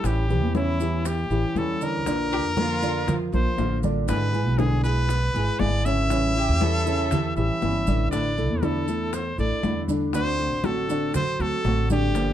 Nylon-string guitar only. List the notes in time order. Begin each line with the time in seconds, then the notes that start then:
0.03 E3 G3 C#4 E4
0.28 G3 C#4 E4
0.54 E3 G3 C#4 E4
0.80 G3 C#4 E4
1.05 muted nylon-string guitar stroke
1.31 G3 C#4 E4
1.56 E3 G3 C#4 E4
2.07 D3 A#3 D4 F4
2.32 A#3 D4 F4
2.57 D3 A#3 D4 F4
2.82 A#3 D4 F4
3.07 muted nylon-string guitar stroke
3.32 A#3 D4 F4
3.57 D3 A#3 D4 F4
4.08 D3 G#3 B3 E4 G#4
4.33 B3 E4 G#4
4.58 D3 G#3 B3 E4 G#4
4.83 B3 E4 G#4
5.09 muted nylon-string guitar stroke
5.34 B3 E4 G#4
5.59 D3 G#3 B3 E4 G#4
6.09 E3 G3 C#4 E4
6.35 G3 C#4 E4
6.60 E3 G3 C#4 E4
6.86 G3 C#4 E4
7.11 muted nylon-string guitar stroke
7.36 G3 C#4 E4
7.62 E3 G3 C#4 E4
8.12 D3 A3 D4 E4
8.37 A3 D4 E4
8.62 D3 A3 D4 E4
8.87 A3 D4 E4
9.12 muted nylon-string guitar stroke
9.38 A3 D4 E4
9.63 D3 A3 D4 E4
10.13 D3 A3 C4 F#4
10.38 A3 C4 F#4
10.63 D3 A3 C4 F#4
10.89 A3 C4 F#4
11.14 muted nylon-string guitar stroke
11.39 A3 C4 F#4
11.64 D3 A3 C4 F#4
12.14 D3 F3 A#3 D4 G4